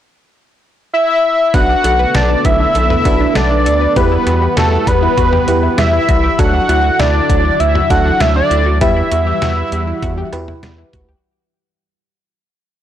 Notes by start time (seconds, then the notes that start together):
0.94 E5
1.54 B1 D3 B3 D4 F#4 A4 B4 F#5, kick, closed hi-hat
1.69 D4
1.84 B1 A4, closed hi-hat, cowbell
1.99 B4
2.15 B1 A4 D5, snare, closed hi-hat
2.30 D4
2.45 B1 B3 E5, kick, closed hi-hat
2.60 D4
2.75 B1 A4, closed hi-hat
2.90 B4, mid tom
3.05 B1 D4 F#4 A4 B4, kick, closed hi-hat
3.20 D4
3.35 B1 B3 D5, snare, closed hi-hat
3.51 D4
3.66 D2 A4, closed hi-hat
3.81 B4
3.96 E2 E3 G3 E4 G4 B4 F#5, kick, closed hi-hat
4.11 E4
4.27 E2 F#4, closed hi-hat, cowbell
4.42 G4
4.57 E2 F#4 A4, snare, closed hi-hat
4.72 E4
4.87 E2 G3 B4, kick, closed hi-hat
5.02 E4
5.17 E2 F#4, kick, closed hi-hat
5.33 G4, mid tom
5.48 E2 E4 F#4 G4 B4, closed hi-hat
5.63 E4
5.78 E2 G3 E5, snare, closed hi-hat
5.93 E4
6.08 C2 F#4, kick, closed hi-hat
6.24 G4
6.39 D2 D3 F#3 D4 E4 F#4 A4 F#5, kick, closed hi-hat
6.54 D4
6.69 D2 E4, closed hi-hat, cowbell
6.84 F#4
6.99 D2 E4 D5, snare, closed hi-hat
7.15 D4
7.30 D2 F#3, kick, closed hi-hat
7.45 D4
7.60 D2 E4 E5, closed hi-hat
7.75 F#4, mid tom
7.90 D2 D4 E4 F#4 A4 F#5, kick, closed hi-hat
8.05 D4
8.20 D2 F#3 E5, snare, closed hi-hat
8.36 D4 D5
8.51 D2 E4, closed hi-hat
8.66 F#4
8.81 E2 E3 G3 E4 G4 B4 E5 F#5, kick, closed hi-hat
8.96 E4
9.12 E2 F#4, closed hi-hat
9.27 G4
9.42 E2 F#4, snare, closed hi-hat
9.57 E4
9.72 E2 G3, closed hi-hat
9.87 E4
10.02 E2 F#4, kick, closed hi-hat
10.18 G4
10.33 E2 E4 F#4 G4 B4, closed hi-hat, cowbell
10.48 E4, mid tom
10.63 E2 G3, snare, closed hi-hat
10.78 E4
10.93 D2 F#4, kick, closed hi-hat, mid tom
11.09 G4